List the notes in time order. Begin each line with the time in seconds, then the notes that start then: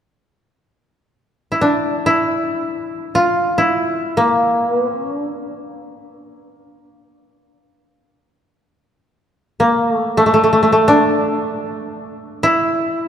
1.52 E4
1.61 D4
2.06 E4
3.15 F4
3.58 E4
4.17 A#3
4.66 B3
4.84 C4
5.03 C#4
5.21 D4
9.60 A#3
9.92 A3
10.17 A3
10.26 A3
10.34 A3
10.44 A3
10.53 A3
10.63 A3
10.72 A3
10.88 D4
12.43 E4